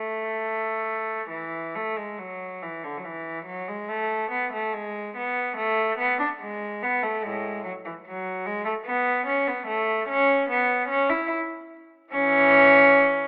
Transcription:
0.00 1.26 A3 medium
1.29 1.72 E3 medium
1.75 1.98 A3 medium
1.96 2.19 G#3 medium
2.18 2.62 F#3 medium
2.62 2.84 E3 medium
2.84 2.98 D3 medium
2.97 3.05 F#3 soft
3.05 3.47 E3 medium
3.45 3.67 F#3 medium
3.68 3.89 G#3 medium
3.89 4.31 A3 medium
4.31 4.52 B3 medium
4.53 4.73 A3 medium
4.73 5.16 G#3 medium
5.16 5.57 B3 medium
5.57 5.98 A3 medium
5.98 6.19 B3 medium
6.19 6.27 D4 medium
6.40 6.81 G#3 medium
6.82 7.02 B3 medium
7.03 7.23 A3 medium
7.22 7.61 A2 medium
7.22 7.63 G#3 medium
7.64 7.72 F#3 medium
7.85 7.93 E3 medium
8.06 8.45 F#3 medium
8.46 8.66 G#3 medium
8.65 8.73 A3 medium
8.86 9.26 B3 medium
9.26 9.47 C#4 medium
9.47 9.68 B3 medium
9.67 10.08 A3 medium
10.08 10.49 C#4 medium
10.49 10.90 B3 medium
10.89 11.10 C#4 medium
11.09 11.31 E4 medium
12.12 13.28 E3 medium
12.12 13.28 C#4 loud

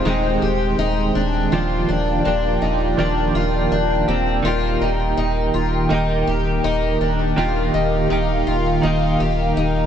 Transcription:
0.00 1.48 D#3 medium
0.00 1.50 G#3 medium
0.00 1.50 C5 medium
0.00 7.34 G5 medium
0.05 0.38 D#1 loud
0.05 1.51 D#3 medium
0.05 1.53 G#3 loud
0.05 1.53 C4 medium
0.05 0.42 D#4 medium
0.10 1.55 G4 medium
0.42 0.75 D#1 loud
0.42 0.79 G4 medium
0.78 1.11 D#1 loud
0.78 1.15 D#4 medium
1.15 1.48 D#1 loud
1.15 1.52 D4 medium
1.52 1.85 D#1 loud
1.52 2.28 D#3 medium
1.52 2.23 F3 medium
1.52 2.26 A#3 medium
1.52 2.26 D4 loud
1.52 1.89 F4 medium
1.52 4.42 F4 medium
1.52 2.27 G4 medium
1.52 9.86 A#4 medium
1.52 4.43 D5 medium
1.89 2.21 D#1 loud
1.89 2.24 D4 medium
2.25 2.58 D#1 loud
2.25 2.97 F3 medium
2.25 2.99 A#3 medium
2.25 2.61 D4 medium
2.25 2.98 D4 medium
2.25 3.00 G4 medium
2.62 2.94 D#1 loud
2.62 2.98 D#4 medium
2.97 3.31 D#1 loud
2.97 4.13 D#3 medium
2.97 4.08 F3 medium
2.97 4.11 A#3 medium
2.97 3.35 D4 medium
2.97 4.08 D4 loud
2.97 4.07 G4 medium
3.35 3.67 D#1 loud
3.35 3.72 F4 medium
3.71 4.04 D#1 medium
3.71 4.08 D4 medium
4.08 4.41 D#1 loud
4.08 4.44 A#3 soft
4.08 4.45 C4 medium
4.08 4.46 D4 medium
4.08 4.45 G4 medium
4.43 4.77 D#1 loud
4.43 5.89 D#3 loud
4.43 9.86 D#3 medium
4.43 5.90 A#3 medium
4.43 5.92 D#4 medium
4.43 4.82 F4 medium
4.43 9.86 G4 medium
4.48 5.94 G4 medium
4.81 5.14 D#1 loud
4.81 5.16 D#4 medium
5.17 5.50 D#1 loud
5.17 5.54 D#4 medium
5.54 5.87 D#1 medium
5.54 5.91 F4 medium
5.89 6.23 D#1 loud
5.89 7.36 D#3 medium
5.89 7.36 A#3 medium
5.89 6.28 D#4 medium
5.89 7.37 D#4 medium
5.94 7.38 G4 medium
6.27 6.60 D#1 loud
6.27 6.64 G4 medium
6.64 6.97 D#1 loud
6.64 7.00 D#4 medium
7.01 7.33 D#1 loud
7.01 7.38 D4 medium
7.36 7.70 D#1 loud
7.36 8.09 D#3 medium
7.36 8.09 A#3 medium
7.36 8.11 D#4 medium
7.36 7.74 F4 medium
7.36 8.12 G4 loud
7.36 9.86 F5 medium
7.74 8.07 D#1 loud
7.74 8.09 D#4 medium
8.09 8.43 D#1 loud
8.09 8.81 D#3 medium
8.09 8.83 A#3 medium
8.09 8.47 D#4 medium
8.09 8.86 D#4 medium
8.09 8.87 G4 medium
8.47 8.80 D#1 medium
8.47 8.84 F4 medium
8.82 9.16 D#1 loud
8.82 9.86 D#3 medium
8.82 9.86 A#3 medium
8.82 9.20 D#4 medium
8.86 9.86 D#4 medium
8.86 9.86 G4 loud
9.20 9.53 D#1 loud
9.20 9.57 G4 medium
9.57 9.86 D#1 loud
9.57 9.86 D#4 medium

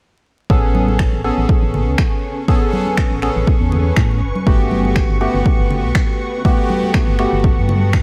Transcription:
0.50 1.08 A1 loud
0.50 1.22 B3 medium
0.50 5.24 C#4 medium
0.50 1.22 C#4 medium
0.50 1.22 G#4 medium
0.50 1.22 A4 medium
0.50 8.03 C#6 medium
0.50 kick loud
0.75 high conga medium
0.88 high conga medium
0.99 finger snap loud
0.99 kick loud
1.06 8.03 B4 medium
1.06 4.22 G#5 medium
1.13 1.31 A1 medium
1.24 2.46 B3 medium
1.24 2.46 C#4 medium
1.24 2.46 G#4 medium
1.24 2.46 A4 medium
1.38 1.46 A1 medium
1.49 kick loud
1.63 1.89 A1 loud
1.74 low conga medium
1.88 1.96 C#2 medium
1.98 finger snap loud
1.98 kick loud
2.48 3.20 B3 medium
2.48 3.20 C#4 medium
2.48 3.20 G#4 loud
2.48 3.20 A4 loud
2.48 kick loud
2.73 high conga medium
2.87 high conga medium
2.97 finger snap loud
2.97 kick loud
3.11 3.30 A1 medium
3.22 4.21 B3 medium
3.22 4.21 C#4 medium
3.22 4.20 G#4 medium
3.22 4.21 A4 medium
3.22 finger snap soft
3.36 3.45 A1 medium
3.47 kick loud
3.61 3.93 E2 loud
3.72 low conga medium
3.97 4.23 A2 medium
3.97 finger snap loud
3.97 kick loud
4.22 4.32 G1 medium
4.22 8.03 F#5 medium
4.35 high conga medium
4.47 5.04 G1 medium
4.47 5.18 A3 medium
4.47 5.18 B3 medium
4.47 5.18 F#4 medium
4.47 5.18 G4 medium
4.47 kick loud
4.71 high conga medium
4.85 high conga medium
4.96 finger snap loud
4.96 kick loud
5.10 5.28 G1 medium
5.21 6.42 A3 medium
5.21 6.42 B3 medium
5.21 6.42 F#4 medium
5.21 6.42 G4 medium
5.35 5.43 G1 medium
5.46 kick loud
5.59 5.86 G1 medium
5.71 low conga medium
5.79 8.03 A5 medium
5.84 5.93 B1 medium
5.95 finger snap loud
5.95 kick loud
6.45 7.17 A3 medium
6.45 7.17 B3 medium
6.45 7.17 F#4 loud
6.45 7.17 G4 loud
6.45 kick loud
6.70 high conga medium
6.83 high conga medium
6.94 finger snap loud
6.94 kick loud
7.08 7.26 G1 medium
7.19 8.03 A3 medium
7.19 8.03 B3 medium
7.19 8.03 F#4 medium
7.19 8.03 G4 medium
7.19 finger snap soft
7.33 7.59 G1 medium
7.44 kick loud
7.58 8.03 G2 loud
7.69 high conga medium
7.69 low conga medium
7.93 finger snap loud
7.93 kick loud

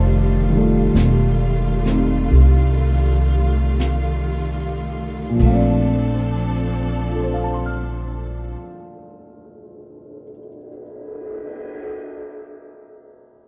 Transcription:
0.00 0.92 F1 medium
0.00 5.35 D#3 medium
0.00 5.35 G3 medium
0.00 5.35 A3 medium
0.00 5.36 F4 medium
0.00 3.78 C5 medium
0.00 3.77 D#5 medium
0.00 3.74 A5 medium
0.50 5.37 D#3 soft
0.50 5.39 G3 soft
0.57 1.85 A3 soft
0.57 5.43 F4 soft
0.95 2.27 E1 medium
0.95 brush sweep soft
0.95 snare soft
0.95 hi-hat pedal soft
1.86 5.40 A3 soft
1.86 5.40 C4 soft
1.86 5.41 D#4 soft
1.86 snare soft
2.31 5.35 C2 medium
2.31 brush sweep soft
3.80 brush sweep soft
3.80 snare soft
3.80 hi-hat pedal soft
5.29 8.47 A#2 soft
5.35 8.53 F3 soft
5.40 8.54 A#1 medium
5.40 8.54 F3 medium
5.40 8.60 A3 soft
5.40 8.54 C4 medium
5.40 8.54 D4 medium
5.40 8.54 A4 medium
5.40 kick soft
5.40 ride soft
5.46 8.67 C4 soft
5.46 7.32 F5 medium
5.54 8.72 D4 medium
6.53 cymbal swell soft
7.09 10.23 F4 soft
7.16 10.30 A4 soft
7.23 10.37 C5 soft
7.34 10.48 F5 soft
7.43 10.57 A5 soft
7.54 10.68 C6 soft
7.66 10.80 F6 soft

